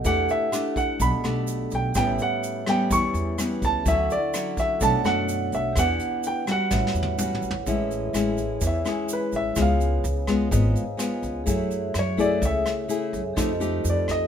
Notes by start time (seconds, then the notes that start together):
0.02 E2 E3 A3 D4 G4 A4 D5, kick, closed hi-hat, shaker
0.06 F#5
0.29 E5, closed hi-hat, shaker
0.52 A3 D4 G4, cross-stick, closed hi-hat, shaker
0.76 F#5, kick, closed hi-hat, shaker
1.00 B1 B2 B5, kick, closed hi-hat, shaker
1.24 B1 A3 D4 G4, cross-stick, closed hi-hat, shaker
1.47 closed hi-hat, shaker
1.71 B1, closed hi-hat, shaker
1.75 G5
1.93 A1 A2 G3 B3 C#4 G4 B4 C#5, kick, cross-stick, closed hi-hat, shaker
1.97 E5 G5
2.19 F#5, closed hi-hat, shaker
2.43 closed hi-hat, shaker
2.66 G3 B3 C#4 G5, cross-stick, closed hi-hat, shaker
2.91 E2 E3 C#6, kick, closed hi-hat, shaker
3.14 E2, closed hi-hat, shaker
3.38 G3 B3 C#4, cross-stick, closed hi-hat, shaker
3.62 C#2 A5, kick, closed hi-hat, shaker
3.84 D2 D3 F#3 C#4 E4 A4 C#6, kick, closed hi-hat, shaker
3.88 E5 F#5
4.10 D5, closed hi-hat, shaker
4.34 F#3 C#4 E4, cross-stick, closed hi-hat, shaker
4.57 E5, kick, closed hi-hat, shaker
4.78 B1 B2 A3 D4 A4 C#5 D5, kick, closed hi-hat, shaker
4.82 F#4 F#5 A5
5.04 F#2 A3 D4 F#4 F#5, cross-stick, closed hi-hat, shaker
5.28 closed hi-hat, shaker
5.52 B1 E5, closed hi-hat, shaker
5.73 E2 G4 B4, kick, cross-stick, closed hi-hat
5.77 E3 B3 D4 G4 D5 F#5, shaker
5.99 closed hi-hat, shaker
6.23 G5, closed hi-hat, shaker
6.47 G3 C#4 F#4, cross-stick, closed hi-hat, shaker
6.52 F#5
6.70 A1 A2 B4 C#5, kick, snare, shaker
6.74 F#5
6.87 snare
6.94 E2, shaker
7.03 high tom
7.18 G3 C#4 F#4, mid tom, shaker
7.35 mid tom
7.42 A1, shaker
7.51 floor tom
7.63 A1 A2 G#3 G#4 B4, kick, closed hi-hat, shaker
7.67 C#4 E4 C#5 E5
7.91 closed hi-hat, shaker
8.13 A1 G#3 C#4 E4, cross-stick, closed hi-hat, shaker
8.37 kick, closed hi-hat, shaker
8.61 E2 E3, kick, closed hi-hat, shaker
8.67 E5
8.85 G#3 C#4 E4 G#4, cross-stick, closed hi-hat, shaker
9.09 closed hi-hat, shaker
9.13 B4
9.31 A1 G#4 C#5 E5, kick, closed hi-hat, shaker
9.36 E5
9.54 C#2 C#3 G#3 B3 F4 G#4 B4 C#5, kick, cross-stick, closed hi-hat, shaker
9.59 F5
9.80 closed hi-hat, shaker
10.04 C#2, closed hi-hat, shaker
10.27 G#3 B3 F4, kick, cross-stick, closed hi-hat, shaker
10.51 G#1 G#2 G#3 B3 F4, kick, closed hi-hat, shaker
10.75 F5, closed hi-hat, shaker
10.97 G#3 B3 F4 G#5, cross-stick, closed hi-hat, shaker
11.23 C#2, kick, closed hi-hat, shaker
11.44 F#2 F#3 A3 E4 G#4 C#5, kick, closed hi-hat, shaker
11.50 E5
11.71 closed hi-hat, shaker
11.94 F#2, cross-stick, closed hi-hat, shaker
11.99 C#5
12.17 A3 E4 G#4 D5, kick, closed hi-hat, shaker
12.41 C#2 C#3, kick, closed hi-hat, shaker
12.45 E5
12.66 cross-stick, closed hi-hat, shaker
12.88 A3 E4 G#4, closed hi-hat, shaker
13.12 F#2 G#4 A4 C#5 E5, kick, closed hi-hat, shaker
13.33 F2 F3 A3 D#4 G4 A4 C5, kick, cross-stick, closed hi-hat
13.38 D#5, shaker
13.60 A3 D#4 G4, closed hi-hat, shaker
13.84 F2, closed hi-hat, shaker
13.90 D5
14.08 D#5, kick, cross-stick, closed hi-hat, shaker